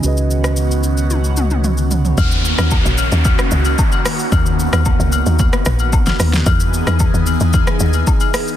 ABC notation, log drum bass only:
X:1
M:4/4
L:1/16
Q:1/4=112
K:Ebphr
V:1 name="Log drum bass" clef=bass
z16 | E,,3 E,,2 B,,,2 E,,2 z D,,2 z4 | ^D,,3 D,,2 _D,,2 ^D,,2 z ^A,,,4 D,,2 | =E,,3 E,,2 ^D,,2 E,,2 z D,,2 z4 |]